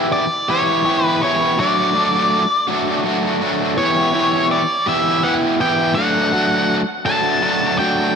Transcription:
Already playing: overdriven electric guitar E3 B3 E4 G4
0.12 lead electric guitar D5
0.49 overdriven electric guitar E3 B3 E4 G4, lead electric guitar C#5
0.85 overdriven electric guitar E3 B3 E4 G4
1.05 lead electric guitar B4
1.22 overdriven electric guitar E3 B3 E4 G4, lead electric guitar C#5
1.58 overdriven electric guitar F#3 A3 D4 F#4, lead electric guitar D5
1.94 overdriven electric guitar F#3 A3 D4 F#4
2.68 overdriven electric guitar F#3 A3 D4 F#4
3.04 overdriven electric guitar F#3 A3 D4 F#4
3.41 overdriven electric guitar F#3 A3 D4 F#4
3.77 overdriven electric guitar E3 B3 E4 G4, lead electric guitar C#5
4.14 overdriven electric guitar E3 B3 E4 G4
4.51 lead electric guitar D5
4.87 overdriven electric guitar E3 B3 E4 G4, lead electric guitar E5
5.23 overdriven electric guitar E3 B3 E4 G4, lead electric guitar F#5
5.60 overdriven electric guitar E3 B3 E4 G4, lead electric guitar G5
5.95 overdriven electric guitar F#3 A3 D4 F#4, lead electric guitar F#5
6.33 overdriven electric guitar F#3 A3 D4 F#4
7.05 overdriven electric guitar F#3 A3 D4 F#4, lead electric guitar A5
7.42 overdriven electric guitar F#3 A3 D4 F#4
7.79 overdriven electric guitar F#3 A3 D4 F#4, lead electric guitar G5

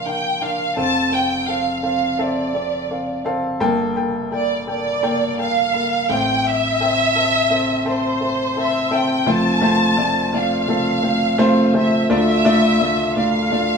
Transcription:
Already playing: grand piano A#1 A#2 D4 A#4 C5 F5
0.06 grand piano D4 A#4 F5, violin section G5
0.41 grand piano D4 A#4 F5, violin section F5
0.77 grand piano F1 F2 C4 A4 F5, violin section A5
1.12 grand piano C4 A4 F5, violin section G5
1.48 grand piano C4 A4 F5, violin section F5
1.83 grand piano C4 A4 F5, violin section F5
2.19 grand piano C4 A4 E5, violin section D5
2.54 grand piano C4 A4 D5
2.90 grand piano C4 A4 F5
3.25 grand piano C4 A4 F5
3.60 grand piano G1 G2 A#3 A4 G5
3.96 grand piano A#3 A4 G5
4.32 grand piano A#3 A4 G5, violin section D5
4.67 grand piano A#3 A4 G5, violin section D5
5.03 grand piano A#3 A4 G5
5.38 grand piano A#3 A4 G5, violin section F5
5.74 grand piano A#3 A4 F5
6.09 grand piano A1 A2 C4 A4 E5, violin section G5
6.46 violin section E5
6.80 grand piano C4 A4 G5
7.15 grand piano C4 A4 E5
7.50 grand piano C4 A4 E5
7.85 grand piano C4 A4 E5, violin section C5
8.20 grand piano C4 A4 E5
8.56 grand piano C4 A4 E5, violin section E5
8.91 grand piano C4 A4 E5, violin section G5
9.26 grand piano F1 F2 A3 C4 F4 C5, violin section A5
9.61 grand piano A3 C4 F4 C5
9.97 grand piano A3 C4 F4 D5
10.33 grand piano A3 C4 F4 D5, violin section F5
10.68 grand piano A3 C4 F4 A4
11.03 grand piano A3 C4 F4 C5
11.38 grand piano A3 C4 F4 C5
11.74 grand piano A3 C4 F4 C5, violin section E5
12.10 grand piano D2 D3 A3 D4 F4 D5, violin section E5
12.45 grand piano A3 D4 F4 D5
12.81 grand piano A3 D4 F4 D5
13.16 grand piano A3 D4 F4 D5, violin section F5
13.51 grand piano A3 D4 F4 D5

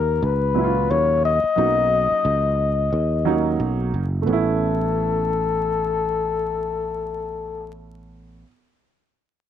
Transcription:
Already playing: fretless electric bass D#2, flugelhorn A#4
0.23 fretless electric bass C#2, flugelhorn B4
0.54 upright piano A#2 F#3 C#4 E4
0.64 upright piano F4
0.90 fretless electric bass D#2, flugelhorn C#5
1.25 flugelhorn D#5
1.44 muted fretless electric bass stroke
1.56 fretless electric bass B1, upright piano F#3 A#3 C#4 D#4
2.12 muted fretless electric bass stroke
2.25 fretless electric bass C#2
2.92 fretless electric bass D#2
3.25 upright piano F#3 A#3 C#4 D#4
3.60 fretless electric bass B1
3.94 fretless electric bass F#1
4.22 upright piano A3 B3
4.27 fretless electric bass A1, upright piano C#4, flugelhorn A4
4.33 upright piano E4

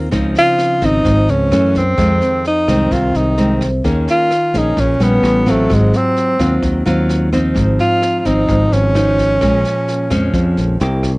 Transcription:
0.11 fingered electric bass C#2, nylon-string guitar C#3 F3 C4 D#4, kick, snare
0.35 tenor saxophone F4, snare
0.58 cross-stick, snare
0.81 fingered electric bass G#1, nylon-string guitar F3 C4 D#4, tenor saxophone D#4, kick, snare
1.04 fingered electric bass G#1, nylon-string guitar G#2, kick, snare
1.28 fingered electric bass C#2, tenor saxophone C#4, snare
1.51 fingered electric bass F#2, nylon-string guitar E3 A3 C#4, cross-stick, snare
1.75 tenor saxophone C4, kick, snare
1.98 nylon-string guitar F2 D#3 G#3 C4, fingered electric bass F2, kick, cross-stick, snare
2.21 snare
2.45 tenor saxophone D#4, snare
2.68 fingered electric bass C2, nylon-string guitar D#3 G#3 C4, kick, cross-stick, snare
2.91 fingered electric bass C2, nylon-string guitar C3, tenor saxophone F4, kick, snare
3.14 fingered electric bass C2, tenor saxophone D#4, snare
3.38 nylon-string guitar D#3 G#3 C4, snare
3.61 kick, cross-stick, snare
3.84 fingered electric bass D#2, nylon-string guitar D#3 A#3 C#4 G#4, kick, snare
4.08 tenor saxophone F4, snare
4.31 cross-stick, snare
4.54 fingered electric bass A#1, nylon-string guitar A#3 C#4 G#4, kick, snare
4.58 tenor saxophone D#4
4.77 fingered electric bass A#1, nylon-string guitar A#2, tenor saxophone C#4, kick, snare
5.00 fingered electric bass A#1, nylon-string guitar G3 B3 C#4, tenor saxophone B3, snare
5.23 fingered electric bass A1, cross-stick, snare
5.46 nylon-string guitar F#3 C4 F4, tenor saxophone A3, kick, snare
5.69 fingered electric bass G#1, nylon-string guitar G#2, kick, cross-stick, snare
5.74 tenor saxophone G#3
5.93 tenor saxophone C4, snare
6.16 snare
6.39 fingered electric bass D#2, nylon-string guitar F#3 C4 F4, kick, cross-stick, snare
6.62 fingered electric bass D#2, nylon-string guitar D#3, kick, snare
6.86 fingered electric bass D#2, nylon-string guitar F#3 C4 F4, snare
7.09 snare
7.32 nylon-string guitar F3 C4 D#4, kick, cross-stick, snare
7.55 fingered electric bass G#1, nylon-string guitar G#2, kick, snare
7.79 tenor saxophone F4, snare
8.02 cross-stick, snare
8.19 tenor saxophone F4
8.25 fingered electric bass G#1, nylon-string guitar F3 C4 D#4, tenor saxophone D#4, kick, snare
8.48 fingered electric bass G#1, nylon-string guitar G#2, kick, snare
8.72 fingered electric bass G#1, tenor saxophone C#4, snare
8.94 nylon-string guitar F3 D#4, cross-stick, snare
9.18 kick, snare
9.41 fingered electric bass A#1, nylon-string guitar A#2 F3 G#3 C#4, kick, cross-stick, snare
9.64 snare
9.88 snare
10.10 fingered electric bass F2, nylon-string guitar F3 G#3 C#4, kick, cross-stick, snare
10.33 fingered electric bass F2, nylon-string guitar F2, kick, snare
10.57 fingered electric bass A#1, snare
10.80 fingered electric bass C2, nylon-string guitar A#3 E4 G4, snare
11.03 kick, cross-stick, snare

